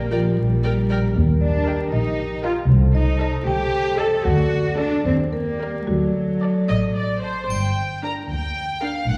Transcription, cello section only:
0, 0, Header, 1, 2, 480
1, 0, Start_track
1, 0, Key_signature, -2, "minor"
1, 0, Tempo, 517688
1, 1070, Time_signature, 6, 3, 24, 8
1, 3945, Tempo, 541516
1, 6825, Tempo, 525394
1, 8355, End_track
2, 0, Start_track
2, 0, Title_t, "Cello section"
2, 0, Program_c, 0, 48
2, 0, Note_on_c, 0, 58, 83
2, 97, Note_off_c, 0, 58, 0
2, 110, Note_on_c, 0, 53, 76
2, 344, Note_off_c, 0, 53, 0
2, 351, Note_on_c, 0, 55, 70
2, 1072, Note_off_c, 0, 55, 0
2, 1316, Note_on_c, 0, 62, 88
2, 1755, Note_off_c, 0, 62, 0
2, 1792, Note_on_c, 0, 63, 89
2, 2254, Note_off_c, 0, 63, 0
2, 2264, Note_on_c, 0, 65, 79
2, 2338, Note_off_c, 0, 65, 0
2, 2735, Note_on_c, 0, 63, 94
2, 3182, Note_off_c, 0, 63, 0
2, 3218, Note_on_c, 0, 67, 115
2, 3692, Note_off_c, 0, 67, 0
2, 3705, Note_on_c, 0, 69, 95
2, 3946, Note_on_c, 0, 66, 100
2, 3947, Note_off_c, 0, 69, 0
2, 4417, Note_off_c, 0, 66, 0
2, 4418, Note_on_c, 0, 62, 93
2, 4651, Note_off_c, 0, 62, 0
2, 4655, Note_on_c, 0, 60, 89
2, 4726, Note_off_c, 0, 60, 0
2, 4892, Note_on_c, 0, 58, 88
2, 5370, Note_off_c, 0, 58, 0
2, 5380, Note_on_c, 0, 54, 75
2, 6585, Note_off_c, 0, 54, 0
2, 6829, Note_on_c, 0, 43, 53
2, 7406, Note_off_c, 0, 43, 0
2, 7554, Note_on_c, 0, 38, 57
2, 8124, Note_off_c, 0, 38, 0
2, 8271, Note_on_c, 0, 45, 64
2, 8355, Note_off_c, 0, 45, 0
2, 8355, End_track
0, 0, End_of_file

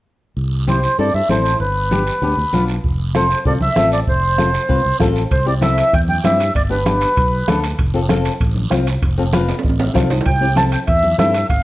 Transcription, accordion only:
0, 0, Header, 1, 2, 480
1, 0, Start_track
1, 0, Key_signature, 0, "major"
1, 0, Tempo, 308960
1, 573, Time_signature, 4, 2, 24, 8
1, 18070, End_track
2, 0, Start_track
2, 0, Title_t, "Accordion"
2, 0, Program_c, 0, 21
2, 1077, Note_on_c, 0, 72, 78
2, 1512, Note_off_c, 0, 72, 0
2, 1547, Note_on_c, 0, 74, 89
2, 1764, Note_off_c, 0, 74, 0
2, 1782, Note_on_c, 0, 76, 89
2, 2001, Note_off_c, 0, 76, 0
2, 2022, Note_on_c, 0, 72, 80
2, 2464, Note_off_c, 0, 72, 0
2, 2488, Note_on_c, 0, 71, 85
2, 4109, Note_off_c, 0, 71, 0
2, 4904, Note_on_c, 0, 72, 83
2, 5346, Note_off_c, 0, 72, 0
2, 5385, Note_on_c, 0, 74, 85
2, 5491, Note_off_c, 0, 74, 0
2, 5630, Note_on_c, 0, 76, 95
2, 6070, Note_off_c, 0, 76, 0
2, 6108, Note_on_c, 0, 74, 79
2, 6213, Note_off_c, 0, 74, 0
2, 6352, Note_on_c, 0, 72, 83
2, 7723, Note_off_c, 0, 72, 0
2, 8262, Note_on_c, 0, 72, 85
2, 8483, Note_off_c, 0, 72, 0
2, 8508, Note_on_c, 0, 74, 81
2, 8613, Note_off_c, 0, 74, 0
2, 8743, Note_on_c, 0, 76, 88
2, 9227, Note_on_c, 0, 79, 96
2, 9235, Note_off_c, 0, 76, 0
2, 9333, Note_off_c, 0, 79, 0
2, 9467, Note_on_c, 0, 79, 94
2, 9685, Note_off_c, 0, 79, 0
2, 9707, Note_on_c, 0, 76, 92
2, 10149, Note_off_c, 0, 76, 0
2, 10188, Note_on_c, 0, 74, 93
2, 10294, Note_off_c, 0, 74, 0
2, 10425, Note_on_c, 0, 71, 80
2, 11799, Note_off_c, 0, 71, 0
2, 15939, Note_on_c, 0, 79, 98
2, 16420, Note_on_c, 0, 81, 92
2, 16432, Note_off_c, 0, 79, 0
2, 16527, Note_off_c, 0, 81, 0
2, 16664, Note_on_c, 0, 79, 90
2, 16770, Note_off_c, 0, 79, 0
2, 16895, Note_on_c, 0, 76, 89
2, 17341, Note_off_c, 0, 76, 0
2, 17380, Note_on_c, 0, 76, 86
2, 17823, Note_off_c, 0, 76, 0
2, 17859, Note_on_c, 0, 77, 89
2, 18070, Note_off_c, 0, 77, 0
2, 18070, End_track
0, 0, End_of_file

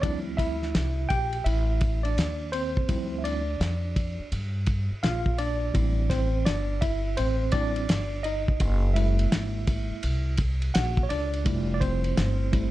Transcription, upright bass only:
0, 0, Header, 1, 3, 480
1, 0, Start_track
1, 0, Key_signature, -1, "minor"
1, 0, Tempo, 714286
1, 19, Time_signature, 4, 2, 24, 8
1, 8540, End_track
2, 0, Start_track
2, 0, Title_t, "Upright bass"
2, 0, Program_c, 0, 32
2, 23, Note_on_c, 0, 38, 93
2, 477, Note_off_c, 0, 38, 0
2, 503, Note_on_c, 0, 36, 88
2, 729, Note_off_c, 0, 36, 0
2, 745, Note_on_c, 0, 34, 81
2, 970, Note_off_c, 0, 34, 0
2, 979, Note_on_c, 0, 33, 92
2, 1435, Note_off_c, 0, 33, 0
2, 1458, Note_on_c, 0, 39, 89
2, 1915, Note_off_c, 0, 39, 0
2, 1946, Note_on_c, 0, 38, 89
2, 2399, Note_off_c, 0, 38, 0
2, 2422, Note_on_c, 0, 41, 88
2, 2794, Note_off_c, 0, 41, 0
2, 2903, Note_on_c, 0, 43, 91
2, 3275, Note_off_c, 0, 43, 0
2, 3383, Note_on_c, 0, 34, 96
2, 3837, Note_off_c, 0, 34, 0
2, 3865, Note_on_c, 0, 33, 98
2, 4319, Note_off_c, 0, 33, 0
2, 4345, Note_on_c, 0, 31, 92
2, 4798, Note_off_c, 0, 31, 0
2, 4824, Note_on_c, 0, 33, 89
2, 5278, Note_off_c, 0, 33, 0
2, 5304, Note_on_c, 0, 31, 94
2, 5758, Note_off_c, 0, 31, 0
2, 5782, Note_on_c, 0, 30, 116
2, 6237, Note_off_c, 0, 30, 0
2, 6263, Note_on_c, 0, 32, 85
2, 6635, Note_off_c, 0, 32, 0
2, 6743, Note_on_c, 0, 36, 90
2, 7198, Note_off_c, 0, 36, 0
2, 7225, Note_on_c, 0, 34, 97
2, 7451, Note_off_c, 0, 34, 0
2, 7464, Note_on_c, 0, 37, 81
2, 7690, Note_off_c, 0, 37, 0
2, 7702, Note_on_c, 0, 29, 110
2, 8157, Note_off_c, 0, 29, 0
2, 8183, Note_on_c, 0, 31, 95
2, 8540, Note_off_c, 0, 31, 0
2, 8540, End_track
3, 0, Start_track
3, 0, Title_t, "Muted upright bass strokes"
3, 2817, Note_on_c, 9, 29, 45
3, 2885, Note_off_c, 9, 29, 0
3, 3296, Note_on_c, 9, 29, 42
3, 3363, Note_off_c, 9, 29, 0
3, 6657, Note_on_c, 9, 29, 49
3, 6724, Note_off_c, 9, 29, 0
3, 8540, End_track
0, 0, End_of_file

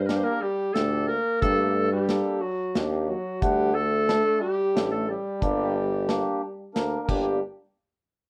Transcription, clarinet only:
0, 0, Header, 1, 2, 480
1, 0, Start_track
1, 0, Key_signature, -2, "minor"
1, 0, Tempo, 667408
1, 1018, Time_signature, 3, 2, 24, 8
1, 5963, End_track
2, 0, Start_track
2, 0, Title_t, "Clarinet"
2, 0, Program_c, 0, 71
2, 44, Note_on_c, 0, 70, 67
2, 113, Note_on_c, 0, 72, 92
2, 124, Note_off_c, 0, 70, 0
2, 169, Note_on_c, 0, 70, 101
2, 179, Note_off_c, 0, 72, 0
2, 300, Note_on_c, 0, 67, 99
2, 311, Note_off_c, 0, 70, 0
2, 531, Note_on_c, 0, 69, 98
2, 542, Note_off_c, 0, 67, 0
2, 773, Note_off_c, 0, 69, 0
2, 777, Note_on_c, 0, 70, 95
2, 1001, Note_off_c, 0, 70, 0
2, 1016, Note_on_c, 0, 69, 111
2, 1351, Note_off_c, 0, 69, 0
2, 1376, Note_on_c, 0, 67, 84
2, 1731, Note_on_c, 0, 66, 87
2, 1742, Note_off_c, 0, 67, 0
2, 2022, Note_off_c, 0, 66, 0
2, 2157, Note_on_c, 0, 67, 55
2, 2207, Note_on_c, 0, 66, 84
2, 2218, Note_off_c, 0, 67, 0
2, 2459, Note_on_c, 0, 67, 106
2, 2470, Note_off_c, 0, 66, 0
2, 2693, Note_on_c, 0, 69, 103
2, 2704, Note_off_c, 0, 67, 0
2, 3169, Note_off_c, 0, 69, 0
2, 3173, Note_on_c, 0, 67, 104
2, 3510, Note_off_c, 0, 67, 0
2, 3531, Note_on_c, 0, 69, 77
2, 3646, Note_off_c, 0, 69, 0
2, 3669, Note_on_c, 0, 67, 83
2, 4837, Note_off_c, 0, 67, 0
2, 5101, Note_on_c, 0, 67, 85
2, 5324, Note_off_c, 0, 67, 0
2, 5963, End_track
0, 0, End_of_file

